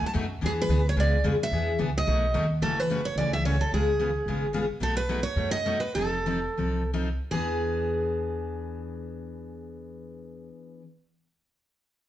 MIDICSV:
0, 0, Header, 1, 5, 480
1, 0, Start_track
1, 0, Tempo, 274348
1, 740, Time_signature, 4, 2, 24, 8
1, 8901, Tempo, 294551
1, 10821, Tempo, 351288
1, 12261, Tempo, 391645
1, 18098, End_track
2, 0, Start_track
2, 0, Title_t, "Steel-string acoustic guitar"
2, 0, Program_c, 0, 25
2, 110, Note_on_c, 0, 81, 82
2, 191, Note_off_c, 0, 81, 0
2, 800, Note_on_c, 0, 68, 82
2, 888, Note_off_c, 0, 68, 0
2, 1077, Note_on_c, 0, 71, 86
2, 1492, Note_off_c, 0, 71, 0
2, 1557, Note_on_c, 0, 73, 88
2, 1637, Note_off_c, 0, 73, 0
2, 1746, Note_on_c, 0, 74, 89
2, 2171, Note_off_c, 0, 74, 0
2, 2505, Note_on_c, 0, 76, 97
2, 3120, Note_off_c, 0, 76, 0
2, 3458, Note_on_c, 0, 75, 91
2, 4327, Note_off_c, 0, 75, 0
2, 4590, Note_on_c, 0, 69, 81
2, 4891, Note_off_c, 0, 69, 0
2, 4891, Note_on_c, 0, 71, 83
2, 5339, Note_on_c, 0, 73, 78
2, 5350, Note_off_c, 0, 71, 0
2, 5529, Note_off_c, 0, 73, 0
2, 5557, Note_on_c, 0, 74, 83
2, 5800, Note_off_c, 0, 74, 0
2, 5832, Note_on_c, 0, 76, 94
2, 6016, Note_off_c, 0, 76, 0
2, 6041, Note_on_c, 0, 73, 83
2, 6308, Note_off_c, 0, 73, 0
2, 6313, Note_on_c, 0, 69, 80
2, 6496, Note_off_c, 0, 69, 0
2, 6540, Note_on_c, 0, 68, 72
2, 7889, Note_off_c, 0, 68, 0
2, 8450, Note_on_c, 0, 69, 80
2, 8683, Note_off_c, 0, 69, 0
2, 8690, Note_on_c, 0, 71, 87
2, 9125, Note_off_c, 0, 71, 0
2, 9133, Note_on_c, 0, 73, 99
2, 9589, Note_off_c, 0, 73, 0
2, 9595, Note_on_c, 0, 75, 96
2, 10051, Note_off_c, 0, 75, 0
2, 10062, Note_on_c, 0, 71, 84
2, 10278, Note_off_c, 0, 71, 0
2, 10304, Note_on_c, 0, 69, 73
2, 11688, Note_off_c, 0, 69, 0
2, 12249, Note_on_c, 0, 68, 68
2, 16133, Note_off_c, 0, 68, 0
2, 18098, End_track
3, 0, Start_track
3, 0, Title_t, "Steel-string acoustic guitar"
3, 0, Program_c, 1, 25
3, 235, Note_on_c, 1, 54, 83
3, 238, Note_on_c, 1, 47, 85
3, 246, Note_on_c, 1, 63, 82
3, 252, Note_on_c, 1, 57, 94
3, 255, Note_on_c, 1, 66, 93
3, 426, Note_off_c, 1, 54, 0
3, 427, Note_off_c, 1, 47, 0
3, 431, Note_off_c, 1, 63, 0
3, 434, Note_off_c, 1, 57, 0
3, 436, Note_off_c, 1, 66, 0
3, 721, Note_on_c, 1, 52, 68
3, 733, Note_on_c, 1, 59, 77
3, 738, Note_on_c, 1, 62, 75
3, 746, Note_on_c, 1, 68, 74
3, 1052, Note_off_c, 1, 52, 0
3, 1057, Note_off_c, 1, 59, 0
3, 1060, Note_off_c, 1, 62, 0
3, 1064, Note_off_c, 1, 68, 0
3, 1204, Note_on_c, 1, 52, 79
3, 1214, Note_on_c, 1, 62, 95
3, 1218, Note_on_c, 1, 59, 84
3, 1228, Note_on_c, 1, 68, 95
3, 1390, Note_off_c, 1, 52, 0
3, 1395, Note_off_c, 1, 62, 0
3, 1396, Note_off_c, 1, 59, 0
3, 1402, Note_off_c, 1, 68, 0
3, 1686, Note_on_c, 1, 49, 61
3, 1692, Note_on_c, 1, 56, 57
3, 1698, Note_on_c, 1, 68, 67
3, 1701, Note_on_c, 1, 59, 66
3, 1706, Note_on_c, 1, 65, 67
3, 2013, Note_off_c, 1, 49, 0
3, 2017, Note_off_c, 1, 56, 0
3, 2020, Note_off_c, 1, 68, 0
3, 2021, Note_off_c, 1, 59, 0
3, 2023, Note_off_c, 1, 65, 0
3, 2168, Note_on_c, 1, 49, 88
3, 2175, Note_on_c, 1, 56, 86
3, 2177, Note_on_c, 1, 65, 87
3, 2182, Note_on_c, 1, 59, 86
3, 2191, Note_on_c, 1, 68, 100
3, 2351, Note_off_c, 1, 49, 0
3, 2355, Note_off_c, 1, 56, 0
3, 2356, Note_off_c, 1, 65, 0
3, 2358, Note_off_c, 1, 59, 0
3, 2363, Note_off_c, 1, 68, 0
3, 2658, Note_on_c, 1, 52, 65
3, 2671, Note_on_c, 1, 59, 65
3, 2676, Note_on_c, 1, 62, 66
3, 2683, Note_on_c, 1, 68, 75
3, 2979, Note_off_c, 1, 52, 0
3, 2986, Note_off_c, 1, 59, 0
3, 2988, Note_off_c, 1, 62, 0
3, 2992, Note_off_c, 1, 68, 0
3, 3124, Note_on_c, 1, 52, 80
3, 3130, Note_on_c, 1, 59, 83
3, 3137, Note_on_c, 1, 68, 81
3, 3138, Note_on_c, 1, 62, 88
3, 3309, Note_off_c, 1, 52, 0
3, 3312, Note_off_c, 1, 59, 0
3, 3315, Note_off_c, 1, 68, 0
3, 3316, Note_off_c, 1, 62, 0
3, 3614, Note_on_c, 1, 47, 62
3, 3623, Note_on_c, 1, 54, 69
3, 3625, Note_on_c, 1, 57, 72
3, 3633, Note_on_c, 1, 66, 66
3, 3635, Note_on_c, 1, 63, 62
3, 3937, Note_off_c, 1, 47, 0
3, 3942, Note_off_c, 1, 54, 0
3, 3943, Note_off_c, 1, 57, 0
3, 3947, Note_off_c, 1, 66, 0
3, 3948, Note_off_c, 1, 63, 0
3, 4094, Note_on_c, 1, 47, 75
3, 4097, Note_on_c, 1, 57, 82
3, 4100, Note_on_c, 1, 54, 80
3, 4103, Note_on_c, 1, 63, 81
3, 4103, Note_on_c, 1, 66, 93
3, 4274, Note_off_c, 1, 47, 0
3, 4275, Note_off_c, 1, 57, 0
3, 4277, Note_off_c, 1, 54, 0
3, 4278, Note_off_c, 1, 63, 0
3, 4278, Note_off_c, 1, 66, 0
3, 4580, Note_on_c, 1, 52, 62
3, 4582, Note_on_c, 1, 49, 60
3, 4585, Note_on_c, 1, 57, 64
3, 4596, Note_on_c, 1, 66, 67
3, 4603, Note_on_c, 1, 61, 66
3, 4900, Note_off_c, 1, 52, 0
3, 4901, Note_off_c, 1, 49, 0
3, 4902, Note_off_c, 1, 57, 0
3, 4908, Note_off_c, 1, 66, 0
3, 4912, Note_off_c, 1, 61, 0
3, 5070, Note_on_c, 1, 49, 74
3, 5075, Note_on_c, 1, 57, 77
3, 5083, Note_on_c, 1, 52, 75
3, 5089, Note_on_c, 1, 61, 81
3, 5095, Note_on_c, 1, 66, 87
3, 5242, Note_off_c, 1, 49, 0
3, 5244, Note_off_c, 1, 57, 0
3, 5248, Note_off_c, 1, 52, 0
3, 5251, Note_off_c, 1, 61, 0
3, 5254, Note_off_c, 1, 66, 0
3, 5557, Note_on_c, 1, 49, 52
3, 5565, Note_on_c, 1, 52, 54
3, 5570, Note_on_c, 1, 57, 57
3, 5573, Note_on_c, 1, 61, 60
3, 5580, Note_on_c, 1, 66, 55
3, 5869, Note_off_c, 1, 49, 0
3, 5873, Note_off_c, 1, 52, 0
3, 5875, Note_off_c, 1, 57, 0
3, 5877, Note_off_c, 1, 61, 0
3, 5880, Note_off_c, 1, 66, 0
3, 6045, Note_on_c, 1, 49, 79
3, 6051, Note_on_c, 1, 52, 84
3, 6056, Note_on_c, 1, 61, 82
3, 6059, Note_on_c, 1, 66, 81
3, 6061, Note_on_c, 1, 57, 71
3, 6209, Note_off_c, 1, 49, 0
3, 6212, Note_off_c, 1, 52, 0
3, 6215, Note_off_c, 1, 61, 0
3, 6216, Note_off_c, 1, 66, 0
3, 6217, Note_off_c, 1, 57, 0
3, 6534, Note_on_c, 1, 49, 59
3, 6534, Note_on_c, 1, 59, 67
3, 6540, Note_on_c, 1, 56, 62
3, 6547, Note_on_c, 1, 65, 64
3, 6549, Note_on_c, 1, 68, 71
3, 6837, Note_off_c, 1, 49, 0
3, 6837, Note_off_c, 1, 59, 0
3, 6840, Note_off_c, 1, 56, 0
3, 6844, Note_off_c, 1, 65, 0
3, 6844, Note_off_c, 1, 68, 0
3, 6987, Note_on_c, 1, 49, 72
3, 6991, Note_on_c, 1, 56, 69
3, 6993, Note_on_c, 1, 59, 75
3, 7000, Note_on_c, 1, 65, 81
3, 7005, Note_on_c, 1, 68, 90
3, 7160, Note_off_c, 1, 49, 0
3, 7162, Note_off_c, 1, 56, 0
3, 7163, Note_off_c, 1, 59, 0
3, 7167, Note_off_c, 1, 65, 0
3, 7169, Note_off_c, 1, 68, 0
3, 7487, Note_on_c, 1, 49, 57
3, 7487, Note_on_c, 1, 56, 59
3, 7495, Note_on_c, 1, 59, 67
3, 7501, Note_on_c, 1, 68, 69
3, 7504, Note_on_c, 1, 65, 58
3, 7793, Note_off_c, 1, 56, 0
3, 7794, Note_off_c, 1, 49, 0
3, 7798, Note_off_c, 1, 59, 0
3, 7801, Note_off_c, 1, 68, 0
3, 7802, Note_off_c, 1, 65, 0
3, 7928, Note_on_c, 1, 49, 73
3, 7944, Note_on_c, 1, 59, 80
3, 7945, Note_on_c, 1, 65, 96
3, 7947, Note_on_c, 1, 56, 77
3, 7949, Note_on_c, 1, 68, 94
3, 8111, Note_off_c, 1, 49, 0
3, 8119, Note_off_c, 1, 59, 0
3, 8120, Note_off_c, 1, 56, 0
3, 8120, Note_off_c, 1, 65, 0
3, 8121, Note_off_c, 1, 68, 0
3, 8401, Note_on_c, 1, 47, 59
3, 8410, Note_on_c, 1, 54, 66
3, 8417, Note_on_c, 1, 57, 69
3, 8422, Note_on_c, 1, 63, 63
3, 8429, Note_on_c, 1, 66, 72
3, 8732, Note_off_c, 1, 47, 0
3, 8736, Note_off_c, 1, 54, 0
3, 8739, Note_off_c, 1, 57, 0
3, 8742, Note_off_c, 1, 63, 0
3, 8746, Note_off_c, 1, 66, 0
3, 8901, Note_on_c, 1, 47, 77
3, 8906, Note_on_c, 1, 54, 71
3, 8912, Note_on_c, 1, 63, 86
3, 8916, Note_on_c, 1, 57, 79
3, 8922, Note_on_c, 1, 66, 85
3, 9069, Note_off_c, 1, 47, 0
3, 9071, Note_off_c, 1, 54, 0
3, 9074, Note_off_c, 1, 63, 0
3, 9076, Note_off_c, 1, 57, 0
3, 9079, Note_off_c, 1, 66, 0
3, 9353, Note_on_c, 1, 47, 57
3, 9364, Note_on_c, 1, 54, 62
3, 9371, Note_on_c, 1, 57, 64
3, 9374, Note_on_c, 1, 66, 67
3, 9378, Note_on_c, 1, 63, 59
3, 9667, Note_off_c, 1, 47, 0
3, 9673, Note_off_c, 1, 54, 0
3, 9676, Note_off_c, 1, 57, 0
3, 9678, Note_off_c, 1, 66, 0
3, 9680, Note_off_c, 1, 63, 0
3, 9825, Note_on_c, 1, 47, 78
3, 9832, Note_on_c, 1, 57, 90
3, 9836, Note_on_c, 1, 54, 78
3, 9848, Note_on_c, 1, 66, 87
3, 9849, Note_on_c, 1, 63, 90
3, 10003, Note_off_c, 1, 47, 0
3, 10007, Note_off_c, 1, 57, 0
3, 10009, Note_off_c, 1, 54, 0
3, 10015, Note_off_c, 1, 66, 0
3, 10016, Note_off_c, 1, 63, 0
3, 10317, Note_on_c, 1, 60, 62
3, 10319, Note_on_c, 1, 53, 59
3, 10325, Note_on_c, 1, 63, 65
3, 10332, Note_on_c, 1, 69, 69
3, 10652, Note_off_c, 1, 60, 0
3, 10653, Note_off_c, 1, 53, 0
3, 10656, Note_off_c, 1, 63, 0
3, 10659, Note_off_c, 1, 69, 0
3, 10812, Note_on_c, 1, 60, 73
3, 10813, Note_on_c, 1, 53, 77
3, 10822, Note_on_c, 1, 63, 76
3, 10828, Note_on_c, 1, 69, 76
3, 10980, Note_off_c, 1, 60, 0
3, 10981, Note_off_c, 1, 53, 0
3, 10984, Note_off_c, 1, 63, 0
3, 10987, Note_off_c, 1, 69, 0
3, 11244, Note_on_c, 1, 53, 51
3, 11251, Note_on_c, 1, 63, 51
3, 11258, Note_on_c, 1, 60, 54
3, 11263, Note_on_c, 1, 69, 59
3, 11572, Note_off_c, 1, 53, 0
3, 11576, Note_off_c, 1, 63, 0
3, 11579, Note_off_c, 1, 60, 0
3, 11582, Note_off_c, 1, 69, 0
3, 11735, Note_on_c, 1, 53, 72
3, 11737, Note_on_c, 1, 60, 76
3, 11740, Note_on_c, 1, 63, 81
3, 11745, Note_on_c, 1, 69, 79
3, 11926, Note_off_c, 1, 53, 0
3, 11927, Note_off_c, 1, 60, 0
3, 11929, Note_off_c, 1, 63, 0
3, 11932, Note_off_c, 1, 69, 0
3, 12247, Note_on_c, 1, 52, 70
3, 12266, Note_on_c, 1, 59, 75
3, 12272, Note_on_c, 1, 62, 79
3, 12287, Note_on_c, 1, 68, 77
3, 16538, Note_off_c, 1, 52, 0
3, 16555, Note_off_c, 1, 59, 0
3, 16561, Note_off_c, 1, 62, 0
3, 16577, Note_off_c, 1, 68, 0
3, 18098, End_track
4, 0, Start_track
4, 0, Title_t, "Upright bass"
4, 0, Program_c, 2, 32
4, 264, Note_on_c, 2, 42, 95
4, 728, Note_off_c, 2, 42, 0
4, 742, Note_on_c, 2, 40, 79
4, 1193, Note_off_c, 2, 40, 0
4, 1204, Note_on_c, 2, 38, 91
4, 1671, Note_off_c, 2, 38, 0
4, 1681, Note_on_c, 2, 37, 80
4, 2155, Note_off_c, 2, 37, 0
4, 2175, Note_on_c, 2, 41, 89
4, 2642, Note_off_c, 2, 41, 0
4, 2652, Note_on_c, 2, 40, 75
4, 3120, Note_off_c, 2, 40, 0
4, 3143, Note_on_c, 2, 37, 94
4, 3606, Note_off_c, 2, 37, 0
4, 3626, Note_on_c, 2, 35, 85
4, 4088, Note_off_c, 2, 35, 0
4, 4106, Note_on_c, 2, 39, 90
4, 4568, Note_off_c, 2, 39, 0
4, 4584, Note_on_c, 2, 30, 77
4, 5349, Note_off_c, 2, 30, 0
4, 5525, Note_on_c, 2, 37, 80
4, 6298, Note_off_c, 2, 37, 0
4, 6513, Note_on_c, 2, 37, 75
4, 7275, Note_off_c, 2, 37, 0
4, 7453, Note_on_c, 2, 32, 76
4, 8223, Note_off_c, 2, 32, 0
4, 8407, Note_on_c, 2, 35, 69
4, 9170, Note_off_c, 2, 35, 0
4, 9345, Note_on_c, 2, 42, 85
4, 10114, Note_off_c, 2, 42, 0
4, 10308, Note_on_c, 2, 29, 72
4, 11092, Note_off_c, 2, 29, 0
4, 11263, Note_on_c, 2, 36, 70
4, 12059, Note_off_c, 2, 36, 0
4, 12259, Note_on_c, 2, 40, 75
4, 16142, Note_off_c, 2, 40, 0
4, 18098, End_track
5, 0, Start_track
5, 0, Title_t, "Muted upright bass strokes"
5, 41, Note_on_c, 9, 29, 38
5, 216, Note_off_c, 9, 29, 0
5, 18098, End_track
0, 0, End_of_file